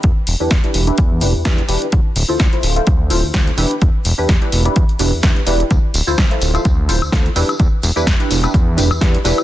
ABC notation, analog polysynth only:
X:1
M:4/4
L:1/16
Q:"Swing 16ths" 1/4=127
K:Ephr
V:1 name="Analog polysynth"
z3 [DEGB] z [DEGB]2 [DEGB] z2 [DEGB] z [DEGB] z [DEGB] z | z3 [EFAc] z [EFAc]2 [EFAc] z2 [EFAc] z [EFAc] z [DEGB] z | z3 [DEGB] z [DEGB]2 [DEGB] z2 [DEGB] z [DEGB] z [DEGB] z | z3 [EFAc] z [EFAc]2 [EFAc] z2 [EFAc] z [EFAc] z [DEGB] z |
z3 [DEGB] z [DEGB]2 [DEGB] z2 [DEGB] z [DEGB] z [DEGB] z |]